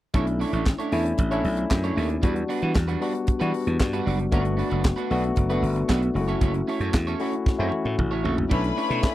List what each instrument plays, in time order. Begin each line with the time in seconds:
0.14 slap bass B1, tine electric piano A3 C#4 D4 E4, clean electric guitar D4 E4 A4 C#5, kick, closed hi-hat
0.27 muted clean electric guitar stroke, closed hi-hat
0.40 clean electric guitar D4 E4 A4 C#5, open hi-hat
0.53 slap bass A1, clean electric guitar D4 E4 A4 C#5, closed hi-hat
0.65 muted clean electric guitar stroke, kick, snare, clap
0.79 clean electric guitar D4 E4 A4 C#5, closed hi-hat
0.92 slap bass E2, tine electric piano A3 C#4 D4 E4, clean electric guitar D4 E4 A4 C#5, open hi-hat
1.05 muted clean electric guitar stroke, closed hi-hat
1.18 slap bass A1, muted clean electric guitar stroke, kick, closed hi-hat
1.31 tine electric piano A3 C#4 D4 E4, clean electric guitar D4 E4 A4 C#5, closed hi-hat
1.44 slap bass B1, muted clean electric guitar stroke, open hi-hat
1.57 muted clean electric guitar stroke, closed hi-hat
1.71 slap bass F#2, muted clean electric guitar stroke, kick, snare, clap
1.84 clean electric guitar D4 E4 A4 C#5, closed hi-hat
1.96 slap bass D#2, clean electric guitar D4 E4 A4 C#5, open hi-hat
2.09 muted clean electric guitar stroke, closed hi-hat
2.22 slap bass E2, clean electric guitar G3 D4 F#4 B4, tine electric piano G3 B3 D4 F#4, kick, closed hi-hat
2.35 muted clean electric guitar stroke, closed hi-hat
2.49 clean electric guitar G3 D4 F#4 B4, open hi-hat
2.62 slap bass E3, clean electric guitar G3 D4 F#4 B4, closed hi-hat
2.75 slap bass E2, muted clean electric guitar stroke, kick, snare, clap
2.88 clean electric guitar G3 D4 F#4 B4, closed hi-hat
3.01 clean electric guitar G3 D4 F#4 B4, tine electric piano G3 B3 D4 F#4, open hi-hat
3.13 muted clean electric guitar stroke, closed hi-hat
3.27 muted clean electric guitar stroke, muted slap bass stroke, kick, closed hi-hat
3.40 slap bass E3, tine electric piano G3 B3 D4 F#4, clean electric guitar G3 D4 F#4 B4, closed hi-hat
3.54 muted clean electric guitar stroke, open hi-hat
3.66 slap bass E2, muted clean electric guitar stroke, closed hi-hat
3.80 slap bass G2, muted clean electric guitar stroke, kick, snare, clap
3.93 clean electric guitar G3 D4 F#4 B4, closed hi-hat
4.06 slap bass F#1, clean electric guitar G3 D4 F#4 B4, open hi-hat
4.19 muted clean electric guitar stroke, closed hi-hat
4.32 slap bass G1, tine electric piano A3 B3 D4 F#4, clean electric guitar B3 D4 F#4 B4, kick, closed hi-hat
4.45 muted clean electric guitar stroke, closed hi-hat
4.57 clean electric guitar B3 D4 F#4 B4, open hi-hat
4.70 slap bass F#1, clean electric guitar B3 D4 F#4 B4, closed hi-hat
4.83 muted clean electric guitar stroke, kick, snare, clap
4.96 clean electric guitar B3 D4 F#4 B4, closed hi-hat
5.10 slap bass B1, tine electric piano A3 B3 D4 F#4, clean electric guitar B3 D4 F#4 B4, open hi-hat
5.24 closed hi-hat
5.36 slap bass F#1, muted clean electric guitar stroke, kick, closed hi-hat
5.49 tine electric piano A3 B3 D4 F#4, clean electric guitar B3 D4 F#4 B4, closed hi-hat
5.62 slap bass G1, muted clean electric guitar stroke, open hi-hat
5.76 muted clean electric guitar stroke, closed hi-hat
5.89 slap bass B1, clean electric guitar B3 D4 F#4 B4, kick, snare, clap
6.02 muted clean electric guitar stroke, closed hi-hat
6.14 slap bass F#1, tine electric piano G#3 C#4 E4 F#4, muted clean electric guitar stroke, open hi-hat
6.21 tine electric piano A3
6.28 clean electric guitar C#4 E4 A4 C#5, closed hi-hat
6.41 slap bass F#1, clean electric guitar C#4 E4 A4 C#5, kick, closed hi-hat
6.54 muted clean electric guitar stroke, closed hi-hat
6.68 clean electric guitar C#4 E4 A4 C#5, open hi-hat
6.80 slap bass F#2, clean electric guitar C#4 E4 A4 C#5, closed hi-hat
6.94 slap bass E2, muted clean electric guitar stroke, kick, snare, clap
7.07 clean electric guitar C#4 E4 A4 C#5, closed hi-hat
7.19 tine electric piano A3 C#4 E4 F#4, clean electric guitar C#4 E4 A4 C#5, open hi-hat
7.33 muted clean electric guitar stroke, closed hi-hat
7.46 muted slap bass stroke, muted clean electric guitar stroke, kick, snare
7.58 slap bass F#2, tine electric piano A3 C#4 E4 F#4, clean electric guitar C#4 E4 A4 C#5
7.72 muted clean electric guitar stroke, high tom
7.85 slap bass A2, muted clean electric guitar stroke, high tom
7.99 slap bass A1, muted clean electric guitar stroke, kick, mid tom
8.11 clean electric guitar C#4 E4 A4 C#5
8.24 slap bass A#1, clean electric guitar C#4 E4 A4 C#5, floor tom
8.37 muted clean electric guitar stroke, floor tom
8.50 slap bass B1, tine electric piano A3 C#4 D4 E4, clean electric guitar D4 E4 A4 C#5, string section B4 B5, kick, crash
8.63 muted clean electric guitar stroke, closed hi-hat
8.77 clean electric guitar D4 E4 A4 C#5, open hi-hat
8.88 slap bass B2, clean electric guitar D4 E4 A4 C#5, closed hi-hat
9.02 tine electric piano A3 C#4 D4 E4, muted clean electric guitar stroke, kick, snare, clap